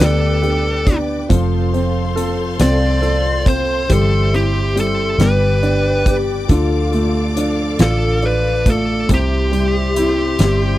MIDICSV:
0, 0, Header, 1, 8, 480
1, 0, Start_track
1, 0, Key_signature, 0, "major"
1, 0, Tempo, 865801
1, 726, Time_signature, 6, 3, 24, 8
1, 5979, End_track
2, 0, Start_track
2, 0, Title_t, "String section"
2, 0, Program_c, 0, 48
2, 0, Note_on_c, 0, 71, 66
2, 0, Note_on_c, 0, 74, 69
2, 0, Note_on_c, 0, 79, 69
2, 0, Note_on_c, 0, 86, 73
2, 702, Note_off_c, 0, 74, 0
2, 704, Note_off_c, 0, 86, 0
2, 710, Note_off_c, 0, 71, 0
2, 711, Note_off_c, 0, 79, 0
2, 722, Note_on_c, 0, 69, 78
2, 725, Note_on_c, 0, 84, 87
2, 726, Note_on_c, 0, 72, 65
2, 727, Note_on_c, 0, 77, 68
2, 2148, Note_off_c, 0, 69, 0
2, 2150, Note_off_c, 0, 77, 0
2, 2152, Note_on_c, 0, 76, 66
2, 2155, Note_on_c, 0, 67, 75
2, 2861, Note_off_c, 0, 84, 0
2, 2862, Note_off_c, 0, 72, 0
2, 2870, Note_off_c, 0, 76, 0
2, 2871, Note_off_c, 0, 67, 0
2, 2879, Note_on_c, 0, 74, 67
2, 2881, Note_on_c, 0, 71, 75
2, 2881, Note_on_c, 0, 86, 80
2, 2884, Note_on_c, 0, 79, 69
2, 3594, Note_off_c, 0, 71, 0
2, 3596, Note_off_c, 0, 79, 0
2, 3606, Note_on_c, 0, 77, 67
2, 3608, Note_on_c, 0, 69, 73
2, 5019, Note_off_c, 0, 74, 0
2, 5020, Note_off_c, 0, 86, 0
2, 5030, Note_off_c, 0, 77, 0
2, 5031, Note_off_c, 0, 69, 0
2, 5046, Note_on_c, 0, 72, 65
2, 5048, Note_on_c, 0, 76, 66
2, 5048, Note_on_c, 0, 84, 78
2, 5050, Note_on_c, 0, 67, 72
2, 5979, Note_off_c, 0, 67, 0
2, 5979, Note_off_c, 0, 72, 0
2, 5979, Note_off_c, 0, 76, 0
2, 5979, Note_off_c, 0, 84, 0
2, 5979, End_track
3, 0, Start_track
3, 0, Title_t, "Lead electric guitar"
3, 0, Program_c, 1, 29
3, 22, Note_on_c, 1, 69, 82
3, 531, Note_off_c, 1, 69, 0
3, 1448, Note_on_c, 1, 74, 107
3, 1929, Note_off_c, 1, 74, 0
3, 1931, Note_on_c, 1, 72, 97
3, 2174, Note_off_c, 1, 72, 0
3, 2176, Note_on_c, 1, 69, 87
3, 2411, Note_off_c, 1, 69, 0
3, 2413, Note_on_c, 1, 67, 86
3, 2632, Note_off_c, 1, 67, 0
3, 2660, Note_on_c, 1, 69, 75
3, 2894, Note_on_c, 1, 71, 80
3, 2898, Note_off_c, 1, 69, 0
3, 3406, Note_off_c, 1, 71, 0
3, 4338, Note_on_c, 1, 69, 92
3, 4577, Note_off_c, 1, 69, 0
3, 4577, Note_on_c, 1, 71, 101
3, 4816, Note_off_c, 1, 71, 0
3, 4821, Note_on_c, 1, 69, 83
3, 5036, Note_off_c, 1, 69, 0
3, 5068, Note_on_c, 1, 67, 79
3, 5979, Note_off_c, 1, 67, 0
3, 5979, End_track
4, 0, Start_track
4, 0, Title_t, "French horn section"
4, 0, Program_c, 2, 60
4, 3354, Note_on_c, 2, 67, 94
4, 3581, Note_off_c, 2, 67, 0
4, 3595, Note_on_c, 2, 65, 105
4, 4198, Note_off_c, 2, 65, 0
4, 5979, End_track
5, 0, Start_track
5, 0, Title_t, "Steel-string acoustic guitar"
5, 0, Program_c, 3, 25
5, 0, Note_on_c, 3, 67, 69
5, 3, Note_on_c, 3, 62, 75
5, 6, Note_on_c, 3, 59, 57
5, 7, Note_on_c, 3, 55, 70
5, 8, Note_on_c, 3, 50, 62
5, 9, Note_on_c, 3, 43, 56
5, 232, Note_off_c, 3, 55, 0
5, 235, Note_off_c, 3, 59, 0
5, 238, Note_on_c, 3, 55, 70
5, 239, Note_off_c, 3, 62, 0
5, 242, Note_on_c, 3, 59, 73
5, 243, Note_off_c, 3, 67, 0
5, 246, Note_on_c, 3, 62, 58
5, 247, Note_off_c, 3, 50, 0
5, 248, Note_off_c, 3, 43, 0
5, 250, Note_on_c, 3, 67, 66
5, 469, Note_off_c, 3, 67, 0
5, 475, Note_off_c, 3, 62, 0
5, 476, Note_on_c, 3, 67, 50
5, 478, Note_off_c, 3, 59, 0
5, 482, Note_off_c, 3, 55, 0
5, 482, Note_on_c, 3, 62, 45
5, 485, Note_on_c, 3, 59, 44
5, 489, Note_on_c, 3, 55, 43
5, 714, Note_off_c, 3, 55, 0
5, 716, Note_off_c, 3, 59, 0
5, 716, Note_on_c, 3, 53, 98
5, 719, Note_off_c, 3, 62, 0
5, 719, Note_on_c, 3, 60, 102
5, 721, Note_off_c, 3, 67, 0
5, 721, Note_on_c, 3, 65, 99
5, 724, Note_on_c, 3, 69, 105
5, 949, Note_off_c, 3, 69, 0
5, 956, Note_on_c, 3, 69, 62
5, 959, Note_off_c, 3, 65, 0
5, 961, Note_off_c, 3, 53, 0
5, 962, Note_off_c, 3, 60, 0
5, 965, Note_on_c, 3, 65, 54
5, 971, Note_on_c, 3, 60, 52
5, 1195, Note_off_c, 3, 60, 0
5, 1196, Note_on_c, 3, 53, 71
5, 1198, Note_off_c, 3, 65, 0
5, 1200, Note_off_c, 3, 69, 0
5, 1201, Note_on_c, 3, 60, 70
5, 1204, Note_on_c, 3, 65, 69
5, 1208, Note_on_c, 3, 69, 79
5, 1426, Note_off_c, 3, 69, 0
5, 1430, Note_off_c, 3, 65, 0
5, 1433, Note_off_c, 3, 60, 0
5, 1433, Note_on_c, 3, 69, 80
5, 1435, Note_off_c, 3, 53, 0
5, 1436, Note_on_c, 3, 65, 77
5, 1439, Note_on_c, 3, 60, 71
5, 1442, Note_on_c, 3, 53, 55
5, 1664, Note_off_c, 3, 53, 0
5, 1668, Note_off_c, 3, 60, 0
5, 1671, Note_on_c, 3, 53, 56
5, 1672, Note_off_c, 3, 65, 0
5, 1675, Note_off_c, 3, 69, 0
5, 1675, Note_on_c, 3, 60, 68
5, 1678, Note_on_c, 3, 65, 62
5, 1682, Note_on_c, 3, 69, 73
5, 1904, Note_off_c, 3, 69, 0
5, 1911, Note_on_c, 3, 69, 45
5, 1913, Note_off_c, 3, 65, 0
5, 1917, Note_off_c, 3, 53, 0
5, 1917, Note_off_c, 3, 60, 0
5, 1920, Note_on_c, 3, 65, 44
5, 1924, Note_on_c, 3, 60, 46
5, 2152, Note_off_c, 3, 60, 0
5, 2153, Note_on_c, 3, 43, 80
5, 2155, Note_on_c, 3, 52, 86
5, 2157, Note_off_c, 3, 69, 0
5, 2158, Note_off_c, 3, 65, 0
5, 2158, Note_on_c, 3, 55, 90
5, 2158, Note_on_c, 3, 60, 94
5, 2160, Note_on_c, 3, 64, 97
5, 2162, Note_on_c, 3, 67, 86
5, 2387, Note_off_c, 3, 67, 0
5, 2393, Note_off_c, 3, 64, 0
5, 2393, Note_on_c, 3, 67, 49
5, 2395, Note_off_c, 3, 60, 0
5, 2398, Note_off_c, 3, 43, 0
5, 2399, Note_off_c, 3, 52, 0
5, 2399, Note_off_c, 3, 55, 0
5, 2399, Note_on_c, 3, 64, 47
5, 2401, Note_on_c, 3, 60, 43
5, 2406, Note_on_c, 3, 55, 44
5, 2628, Note_off_c, 3, 55, 0
5, 2634, Note_off_c, 3, 60, 0
5, 2635, Note_on_c, 3, 55, 53
5, 2638, Note_off_c, 3, 67, 0
5, 2639, Note_off_c, 3, 64, 0
5, 2641, Note_on_c, 3, 60, 61
5, 2646, Note_on_c, 3, 64, 64
5, 2649, Note_on_c, 3, 67, 61
5, 2870, Note_off_c, 3, 67, 0
5, 2875, Note_off_c, 3, 55, 0
5, 2877, Note_off_c, 3, 64, 0
5, 2877, Note_on_c, 3, 67, 74
5, 2878, Note_off_c, 3, 60, 0
5, 2879, Note_on_c, 3, 62, 66
5, 2880, Note_on_c, 3, 59, 66
5, 2882, Note_on_c, 3, 55, 64
5, 2884, Note_on_c, 3, 43, 55
5, 2884, Note_on_c, 3, 50, 55
5, 3109, Note_off_c, 3, 55, 0
5, 3114, Note_off_c, 3, 59, 0
5, 3115, Note_on_c, 3, 55, 58
5, 3119, Note_off_c, 3, 62, 0
5, 3120, Note_off_c, 3, 67, 0
5, 3120, Note_on_c, 3, 59, 63
5, 3123, Note_off_c, 3, 50, 0
5, 3124, Note_off_c, 3, 43, 0
5, 3126, Note_on_c, 3, 62, 59
5, 3128, Note_on_c, 3, 67, 65
5, 3349, Note_off_c, 3, 67, 0
5, 3355, Note_off_c, 3, 62, 0
5, 3356, Note_on_c, 3, 67, 45
5, 3358, Note_off_c, 3, 59, 0
5, 3359, Note_off_c, 3, 55, 0
5, 3362, Note_on_c, 3, 62, 49
5, 3364, Note_on_c, 3, 59, 39
5, 3369, Note_on_c, 3, 55, 41
5, 3591, Note_off_c, 3, 62, 0
5, 3591, Note_on_c, 3, 50, 89
5, 3592, Note_off_c, 3, 55, 0
5, 3594, Note_on_c, 3, 53, 79
5, 3596, Note_off_c, 3, 59, 0
5, 3598, Note_off_c, 3, 67, 0
5, 3598, Note_on_c, 3, 62, 90
5, 3598, Note_on_c, 3, 65, 96
5, 3600, Note_on_c, 3, 69, 109
5, 3829, Note_off_c, 3, 69, 0
5, 3835, Note_off_c, 3, 65, 0
5, 3835, Note_on_c, 3, 69, 64
5, 3837, Note_off_c, 3, 50, 0
5, 3838, Note_off_c, 3, 53, 0
5, 3840, Note_off_c, 3, 62, 0
5, 3841, Note_on_c, 3, 65, 55
5, 3846, Note_on_c, 3, 62, 50
5, 4072, Note_off_c, 3, 62, 0
5, 4072, Note_on_c, 3, 53, 72
5, 4075, Note_off_c, 3, 65, 0
5, 4079, Note_off_c, 3, 69, 0
5, 4079, Note_on_c, 3, 62, 65
5, 4081, Note_on_c, 3, 65, 71
5, 4086, Note_on_c, 3, 69, 80
5, 4310, Note_off_c, 3, 69, 0
5, 4313, Note_off_c, 3, 65, 0
5, 4315, Note_off_c, 3, 62, 0
5, 4316, Note_on_c, 3, 69, 74
5, 4317, Note_off_c, 3, 53, 0
5, 4320, Note_on_c, 3, 65, 69
5, 4322, Note_on_c, 3, 62, 58
5, 4324, Note_on_c, 3, 53, 68
5, 4326, Note_on_c, 3, 50, 64
5, 4548, Note_off_c, 3, 53, 0
5, 4555, Note_off_c, 3, 62, 0
5, 4555, Note_on_c, 3, 53, 57
5, 4558, Note_off_c, 3, 65, 0
5, 4559, Note_off_c, 3, 69, 0
5, 4561, Note_on_c, 3, 62, 61
5, 4564, Note_off_c, 3, 50, 0
5, 4564, Note_on_c, 3, 65, 64
5, 4569, Note_on_c, 3, 69, 72
5, 4791, Note_off_c, 3, 69, 0
5, 4797, Note_off_c, 3, 65, 0
5, 4798, Note_on_c, 3, 69, 53
5, 4799, Note_off_c, 3, 53, 0
5, 4802, Note_off_c, 3, 62, 0
5, 4804, Note_on_c, 3, 65, 47
5, 4811, Note_on_c, 3, 62, 41
5, 5037, Note_on_c, 3, 48, 80
5, 5040, Note_off_c, 3, 69, 0
5, 5041, Note_off_c, 3, 62, 0
5, 5042, Note_on_c, 3, 55, 81
5, 5043, Note_off_c, 3, 65, 0
5, 5044, Note_on_c, 3, 60, 83
5, 5046, Note_on_c, 3, 64, 88
5, 5047, Note_on_c, 3, 67, 94
5, 5271, Note_off_c, 3, 67, 0
5, 5278, Note_off_c, 3, 64, 0
5, 5278, Note_on_c, 3, 67, 57
5, 5280, Note_off_c, 3, 48, 0
5, 5282, Note_off_c, 3, 55, 0
5, 5283, Note_off_c, 3, 60, 0
5, 5285, Note_on_c, 3, 64, 47
5, 5291, Note_on_c, 3, 60, 48
5, 5518, Note_off_c, 3, 60, 0
5, 5518, Note_on_c, 3, 55, 60
5, 5520, Note_off_c, 3, 67, 0
5, 5521, Note_off_c, 3, 64, 0
5, 5525, Note_on_c, 3, 60, 66
5, 5527, Note_on_c, 3, 64, 64
5, 5532, Note_on_c, 3, 67, 62
5, 5752, Note_off_c, 3, 67, 0
5, 5756, Note_off_c, 3, 64, 0
5, 5758, Note_off_c, 3, 60, 0
5, 5758, Note_on_c, 3, 67, 78
5, 5760, Note_off_c, 3, 55, 0
5, 5763, Note_on_c, 3, 64, 84
5, 5765, Note_on_c, 3, 60, 84
5, 5767, Note_on_c, 3, 55, 66
5, 5768, Note_on_c, 3, 48, 67
5, 5979, Note_off_c, 3, 48, 0
5, 5979, Note_off_c, 3, 55, 0
5, 5979, Note_off_c, 3, 60, 0
5, 5979, Note_off_c, 3, 64, 0
5, 5979, Note_off_c, 3, 67, 0
5, 5979, End_track
6, 0, Start_track
6, 0, Title_t, "Grand piano"
6, 0, Program_c, 4, 0
6, 0, Control_c, 4, 64, 127
6, 0, Note_on_c, 4, 55, 64
6, 0, Note_on_c, 4, 62, 60
6, 0, Note_on_c, 4, 67, 53
6, 225, Note_off_c, 4, 67, 0
6, 233, Note_on_c, 4, 67, 57
6, 470, Note_off_c, 4, 62, 0
6, 478, Note_on_c, 4, 62, 53
6, 704, Note_off_c, 4, 55, 0
6, 704, Note_off_c, 4, 67, 0
6, 714, Note_off_c, 4, 62, 0
6, 717, Note_on_c, 4, 53, 66
6, 733, Control_c, 4, 64, 0
6, 841, Control_c, 4, 64, 127
6, 962, Note_on_c, 4, 60, 54
6, 1195, Note_on_c, 4, 69, 59
6, 1430, Note_off_c, 4, 60, 0
6, 1439, Note_on_c, 4, 60, 61
6, 1665, Note_off_c, 4, 69, 0
6, 1673, Note_on_c, 4, 69, 57
6, 1907, Note_off_c, 4, 60, 0
6, 1916, Note_on_c, 4, 60, 53
6, 2137, Note_off_c, 4, 53, 0
6, 2144, Note_off_c, 4, 69, 0
6, 2152, Note_off_c, 4, 60, 0
6, 2160, Note_on_c, 4, 55, 62
6, 2172, Control_c, 4, 64, 0
6, 2257, Control_c, 4, 64, 127
6, 2399, Note_on_c, 4, 64, 47
6, 2629, Note_off_c, 4, 55, 0
6, 2638, Note_on_c, 4, 55, 53
6, 2866, Note_off_c, 4, 64, 0
6, 2872, Note_off_c, 4, 55, 0
6, 2881, Note_on_c, 4, 55, 66
6, 2891, Control_c, 4, 64, 0
6, 2976, Control_c, 4, 64, 127
6, 3121, Note_on_c, 4, 62, 58
6, 3362, Note_on_c, 4, 67, 51
6, 3580, Note_off_c, 4, 55, 0
6, 3587, Note_off_c, 4, 62, 0
6, 3595, Note_off_c, 4, 67, 0
6, 3608, Note_on_c, 4, 50, 60
6, 3609, Control_c, 4, 64, 0
6, 3722, Control_c, 4, 64, 127
6, 3848, Note_on_c, 4, 57, 50
6, 4086, Note_on_c, 4, 62, 54
6, 4322, Note_on_c, 4, 65, 63
6, 4552, Note_off_c, 4, 62, 0
6, 4560, Note_on_c, 4, 62, 54
6, 4783, Note_off_c, 4, 57, 0
6, 4805, Note_on_c, 4, 57, 51
6, 5021, Note_off_c, 4, 65, 0
6, 5023, Note_off_c, 4, 50, 0
6, 5027, Note_off_c, 4, 62, 0
6, 5037, Note_off_c, 4, 57, 0
6, 5039, Note_on_c, 4, 48, 61
6, 5050, Control_c, 4, 64, 0
6, 5137, Control_c, 4, 64, 127
6, 5278, Note_on_c, 4, 55, 54
6, 5525, Note_on_c, 4, 64, 59
6, 5758, Note_off_c, 4, 55, 0
6, 5766, Note_on_c, 4, 55, 64
6, 5979, Note_off_c, 4, 48, 0
6, 5979, Note_off_c, 4, 55, 0
6, 5979, Note_off_c, 4, 64, 0
6, 5979, End_track
7, 0, Start_track
7, 0, Title_t, "Fingered electric bass"
7, 0, Program_c, 5, 33
7, 0, Note_on_c, 5, 38, 92
7, 699, Note_off_c, 5, 38, 0
7, 720, Note_on_c, 5, 29, 99
7, 1419, Note_off_c, 5, 29, 0
7, 1439, Note_on_c, 5, 36, 96
7, 2139, Note_off_c, 5, 36, 0
7, 2158, Note_on_c, 5, 31, 111
7, 2858, Note_off_c, 5, 31, 0
7, 2874, Note_on_c, 5, 31, 98
7, 3576, Note_off_c, 5, 31, 0
7, 3601, Note_on_c, 5, 38, 90
7, 4299, Note_off_c, 5, 38, 0
7, 4320, Note_on_c, 5, 33, 94
7, 5019, Note_off_c, 5, 33, 0
7, 5039, Note_on_c, 5, 36, 106
7, 5739, Note_off_c, 5, 36, 0
7, 5759, Note_on_c, 5, 31, 93
7, 5979, Note_off_c, 5, 31, 0
7, 5979, End_track
8, 0, Start_track
8, 0, Title_t, "Drums"
8, 1, Note_on_c, 9, 42, 90
8, 8, Note_on_c, 9, 38, 106
8, 56, Note_off_c, 9, 42, 0
8, 63, Note_off_c, 9, 38, 0
8, 241, Note_on_c, 9, 42, 42
8, 297, Note_off_c, 9, 42, 0
8, 481, Note_on_c, 9, 36, 90
8, 484, Note_on_c, 9, 42, 71
8, 536, Note_off_c, 9, 36, 0
8, 539, Note_off_c, 9, 42, 0
8, 721, Note_on_c, 9, 36, 96
8, 724, Note_on_c, 9, 42, 84
8, 776, Note_off_c, 9, 36, 0
8, 779, Note_off_c, 9, 42, 0
8, 966, Note_on_c, 9, 42, 48
8, 1022, Note_off_c, 9, 42, 0
8, 1205, Note_on_c, 9, 42, 64
8, 1261, Note_off_c, 9, 42, 0
8, 1439, Note_on_c, 9, 42, 85
8, 1446, Note_on_c, 9, 38, 97
8, 1494, Note_off_c, 9, 42, 0
8, 1501, Note_off_c, 9, 38, 0
8, 1679, Note_on_c, 9, 42, 41
8, 1734, Note_off_c, 9, 42, 0
8, 1919, Note_on_c, 9, 36, 91
8, 1924, Note_on_c, 9, 42, 71
8, 1975, Note_off_c, 9, 36, 0
8, 1979, Note_off_c, 9, 42, 0
8, 2160, Note_on_c, 9, 36, 94
8, 2163, Note_on_c, 9, 42, 89
8, 2216, Note_off_c, 9, 36, 0
8, 2218, Note_off_c, 9, 42, 0
8, 2408, Note_on_c, 9, 42, 47
8, 2464, Note_off_c, 9, 42, 0
8, 2646, Note_on_c, 9, 42, 68
8, 2702, Note_off_c, 9, 42, 0
8, 2881, Note_on_c, 9, 42, 76
8, 2888, Note_on_c, 9, 38, 99
8, 2936, Note_off_c, 9, 42, 0
8, 2944, Note_off_c, 9, 38, 0
8, 3121, Note_on_c, 9, 42, 40
8, 3176, Note_off_c, 9, 42, 0
8, 3360, Note_on_c, 9, 36, 86
8, 3363, Note_on_c, 9, 42, 69
8, 3415, Note_off_c, 9, 36, 0
8, 3418, Note_off_c, 9, 42, 0
8, 3600, Note_on_c, 9, 36, 93
8, 3600, Note_on_c, 9, 42, 79
8, 3655, Note_off_c, 9, 36, 0
8, 3656, Note_off_c, 9, 42, 0
8, 3842, Note_on_c, 9, 42, 46
8, 3898, Note_off_c, 9, 42, 0
8, 4085, Note_on_c, 9, 42, 71
8, 4140, Note_off_c, 9, 42, 0
8, 4319, Note_on_c, 9, 42, 81
8, 4327, Note_on_c, 9, 38, 99
8, 4375, Note_off_c, 9, 42, 0
8, 4382, Note_off_c, 9, 38, 0
8, 4559, Note_on_c, 9, 42, 42
8, 4615, Note_off_c, 9, 42, 0
8, 4801, Note_on_c, 9, 36, 82
8, 4803, Note_on_c, 9, 42, 67
8, 4856, Note_off_c, 9, 36, 0
8, 4858, Note_off_c, 9, 42, 0
8, 5040, Note_on_c, 9, 42, 86
8, 5041, Note_on_c, 9, 36, 94
8, 5096, Note_off_c, 9, 36, 0
8, 5096, Note_off_c, 9, 42, 0
8, 5284, Note_on_c, 9, 42, 51
8, 5339, Note_off_c, 9, 42, 0
8, 5523, Note_on_c, 9, 42, 65
8, 5579, Note_off_c, 9, 42, 0
8, 5760, Note_on_c, 9, 42, 85
8, 5767, Note_on_c, 9, 38, 91
8, 5815, Note_off_c, 9, 42, 0
8, 5822, Note_off_c, 9, 38, 0
8, 5979, End_track
0, 0, End_of_file